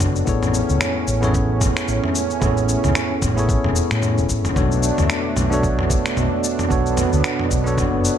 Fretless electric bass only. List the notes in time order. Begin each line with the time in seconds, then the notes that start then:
Already playing: F#1
0.27 A1
0.69 C#2
1.07 A1
1.88 A1
2.42 A1
2.84 C#2
3.22 A1
3.64 E1
3.91 A2
4.18 E1
4.29 A1
4.45 E1
4.56 B1
4.98 D2
5.36 B1
6.17 B1
6.71 B1
7.13 D2
7.51 B1
7.93 F#1